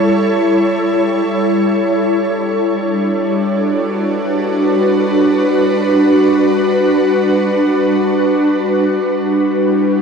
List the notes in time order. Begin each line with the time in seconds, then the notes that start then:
Already playing: G3 E4 A4 C#5
2.10 D4
2.95 F#4
3.37 B4
8.74 G3
8.99 E4
9.45 A4